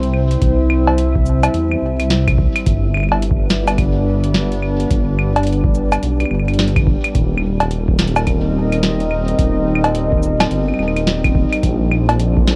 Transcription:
Already playing: C2 G3 C4 E4 C5 E5
0.03 closed hi-hat
0.14 claves
0.31 closed hi-hat
0.42 C2, kick, closed hi-hat
0.70 claves
0.87 cowbell
0.98 closed hi-hat
1.15 kick
1.26 cabasa
1.43 closed hi-hat, cowbell, cabasa, claves
1.54 E2, closed hi-hat
1.71 claves
1.82 C2
1.99 closed hi-hat, claves
2.10 snare, closed hi-hat
2.27 kick, closed hi-hat, claves
2.38 kick
2.56 closed hi-hat, claves
2.66 G1, kick, closed hi-hat
2.90 B3, claves
2.97 B4, claves
3.00 claves
3.03 claves
3.09 cowbell, claves
3.22 D5, closed hi-hat
3.30 D4, kick
3.50 snare, cabasa
3.68 closed hi-hat, cowbell, cabasa, claves
3.78 kick, closed hi-hat, claves
4.24 closed hi-hat
4.34 snare, closed hi-hat
4.52 closed hi-hat
4.62 claves
4.80 closed hi-hat
4.90 G1, kick, closed hi-hat
5.19 claves
5.36 closed hi-hat, cowbell
5.43 closed hi-hat
5.47 closed hi-hat
5.52 closed hi-hat
5.64 kick
5.75 cabasa
5.92 closed hi-hat, cowbell, cabasa, claves
6.03 B1, closed hi-hat
6.20 closed hi-hat, claves
6.25 claves
6.31 G1, claves
6.39 claves
6.48 closed hi-hat, claves
6.53 closed hi-hat
6.59 snare, closed hi-hat
6.67 closed hi-hat
6.76 kick, closed hi-hat, claves
6.87 kick
7.04 closed hi-hat, claves
7.15 D#1, kick, closed hi-hat
7.37 claves
7.60 A#4, closed hi-hat, cowbell
7.71 C4 D#4, closed hi-hat
7.88 kick
7.99 snare, cabasa
8.08 closed hi-hat
8.16 D#5, cowbell, cabasa, claves
8.27 kick, closed hi-hat, claves
8.72 closed hi-hat, claves
8.83 snare, closed hi-hat
9.00 closed hi-hat
9.11 claves
9.28 closed hi-hat
9.39 D#1, kick, closed hi-hat
9.76 claves
9.84 closed hi-hat, cowbell
9.95 closed hi-hat
10.12 kick
10.23 cabasa
10.40 snare, closed hi-hat, cowbell, cabasa, claves
10.51 G1, closed hi-hat
10.69 claves
10.74 claves
10.79 D#1, claves
10.88 claves
10.97 closed hi-hat, claves
11.07 snare, closed hi-hat
11.25 kick, closed hi-hat, claves
11.35 kick
11.53 closed hi-hat, claves
11.63 A#1 F3, kick, closed hi-hat
11.82 D4
11.87 A4
11.91 D5, claves
12.09 closed hi-hat, cowbell
12.13 A#3
12.19 closed hi-hat
12.37 kick
12.47 snare, cabasa

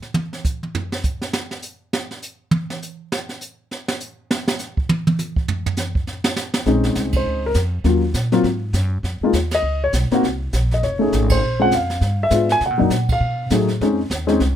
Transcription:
0.02 snare
0.14 high tom
0.33 snare
0.45 kick, hi-hat pedal
0.63 high tom
0.75 floor tom
0.92 snare
1.04 kick, hi-hat pedal
1.22 snare
1.33 snare
1.51 snare
1.62 hi-hat pedal
1.93 snare
2.11 snare
2.22 hi-hat pedal
2.51 high tom
2.70 snare
2.82 hi-hat pedal
3.12 snare
3.29 snare
3.41 hi-hat pedal
3.71 snare
3.88 snare
4.00 hi-hat pedal
4.31 snare
4.48 snare
4.59 snare, hi-hat pedal
4.77 kick
4.89 high tom
5.07 high tom
5.19 hi-hat pedal, high tom
5.36 kick
5.48 floor tom
5.66 floor tom
5.77 snare, hi-hat pedal
5.95 kick
6.07 snare
6.24 snare
6.36 snare, hi-hat pedal
6.54 snare
6.66 A#1 G#3 C4 C#4 D#4, brush sweep, kick, snare
6.83 snare
6.95 C2, kick, snare, hi-hat pedal
7.13 C5, kick, ride
7.26 C#2, brush sweep
7.46 A#4
7.54 F2, kick, snare, hi-hat pedal
7.84 D#2 F#3 A#3 C#4 F4, brush sweep, kick, snare
8.14 A#2, kick, snare, hi-hat pedal
8.32 F#3 A#3 C4 F4, snare
8.44 G#2, brush sweep, kick, snare
8.73 F#2, kick, snare, hi-hat pedal
9.03 F2, brush sweep, kick, snare
9.21 G#3 A#3 D#4 F4, muted upright bass stroke
9.33 D#2, kick, snare, hi-hat pedal
9.51 D#5, snare, ride
9.62 C#2, brush sweep
9.84 C#5
9.93 B1, kick, snare, hi-hat pedal
10.11 A#3 C4 D#4 F#4, muted upright bass stroke, snare
10.23 C2, brush sweep, kick, snare
10.53 A#1, kick, snare, hi-hat pedal
10.71 D#5, snare
10.83 F1 C#5, brush sweep, kick, snare
10.99 A3 C#4 D#4 G#4
11.12 G#1, kick, snare, hi-hat pedal
11.30 C5, kick, ride
11.41 A#1, brush sweep
11.59 G#3 C4 C#4 F4 F#5
11.71 F2 F5, kick, snare, hi-hat pedal
11.90 snare
12.01 G2, brush sweep, kick, snare
12.23 E5
12.30 G#2 G#3 B3 D4 F4, kick, snare, hi-hat pedal
12.49 G#5, snare
12.61 C3, brush sweep, kick, snare
12.66 F#5
12.71 A#2
12.78 F#2 F#3 A#3 D4 D#4
12.90 A#2, kick, snare, hi-hat pedal
13.09 F5, kick, ride
13.21 B2, brush sweep
13.50 A2 F#3 A3 D#4 G#4, kick, snare, hi-hat pedal
13.68 snare
13.81 F2 G#3 C4 C#4 D#4, brush sweep, kick, snare
14.10 D#2, kick, snare, hi-hat pedal
14.27 G#3 C4 C#4 D#4, snare
14.40 C2, brush sweep, kick, snare

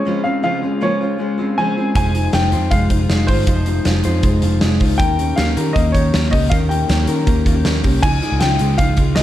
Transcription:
Already playing: C#3 C4 F4 C#5
0.05 C#3 F3 G#3 C#4 F4 C5
0.24 G#3 C4 C#4 F4 C5 F5
0.43 C#3 F3 G#3 C#4 F4 C5 F5
0.62 G#3 C#4 F4 C5
0.81 C#3 F3 G#3 A#3 C#4 F4 C5 C#5
1.01 G#3 C#4 F4 C5
1.18 G#3 C#4 F4 C5
1.38 G#3 C4 C#4 F4 C5
1.58 C#3 F3 G#3 C#4 F4 C5 G#5
1.77 G#3 C4 C#4 F4 C5
1.95 F1 F3 G#3 D#4 F4 C5 G#5, kick, closed hi-hat
2.14 D#4 F4 C5, closed hi-hat
2.32 F1 F3 G#3 D#4 F4 C5 G5, snare, closed hi-hat
2.52 F2 D#4 F4 C5, closed hi-hat
2.71 F1 G#3 D#4 F4 C5 F5, kick, closed hi-hat
2.90 F1 D#4 F4 C5, kick, closed hi-hat
3.01 F4
3.09 F1 F3 G#3 D#4 F4 C5, snare, closed hi-hat
3.27 G1 D#4 F4 C5, kick, open hi-hat
3.47 F1 F3 G#3 D#4 F4 C5, kick, closed hi-hat
3.65 D#4 F4 C5, closed hi-hat
3.85 F1 F3 G#3 D#4 F4 C5, snare, closed hi-hat
4.04 F2 D#4 F4 C5, closed hi-hat
4.22 F1 G#3 D#4 F4 C5, kick, closed hi-hat
4.41 F1 D#4 F4 C5, closed hi-hat
4.61 F1 F3 G#3 D#4 F4 C5, snare, closed hi-hat
4.80 C#2 D#4 F4 C5, kick, open hi-hat
4.98 D#2 D#3 A#3 C#4 G4 A#4 G5, kick, closed hi-hat
5.18 C#4 G4 A#4, closed hi-hat
5.36 D#2 D#3 A#3 C#4 G4 A#4 F5, snare, closed hi-hat
5.57 D#3 C#4 G4 A#4, closed hi-hat
5.73 D#2 A#3 C#4 D#5, kick, closed hi-hat
5.77 G4 A#4
5.92 D#2 A#4 C#5, kick, closed hi-hat
5.96 C#4 G4
6.13 D#2 D#3 A#3 C#4 G4 A#4, snare, closed hi-hat
6.31 C#2 C#4 G4 A#4 D#5, kick, open hi-hat
6.50 D#2 D#3 A#3 C#4 G4 A#4 F5, kick, closed hi-hat
6.69 C#4 G4 A#4 G5, closed hi-hat
6.88 D#2 D#3 A#3 C#4 G4 A#4, snare, closed hi-hat
7.07 D#3 C#4 G4 A#4, closed hi-hat
7.26 D#2 A#3 C#4 G4 A#4, kick, closed hi-hat
7.45 D#2 C#4 F4 G4 A#4, kick, closed hi-hat
7.56 G4
7.64 D#2 D#3 A#3 C#4 G4 A#4, snare, closed hi-hat
7.83 C2 C#4 G4 A#4, kick, open hi-hat
8.03 C#2 C#3 F3 G#3 D#4 F4 G#5, kick, crash
8.22 G#3 D#4 F4, closed hi-hat
8.32 C#2
8.40 C#2 C#3 F3 G#3 D#4 F4 G5, snare, closed hi-hat
8.59 C#2 G#3 D#4 F4, closed hi-hat
8.78 C#2 F3 G#3 F5, kick, closed hi-hat
8.82 D#4 F4
8.89 F4
8.97 C#2 D#4 F4, kick, closed hi-hat
9.02 G#3
9.15 C#2 C#3 F3 G#3 D#5, snare, closed hi-hat
9.20 F4

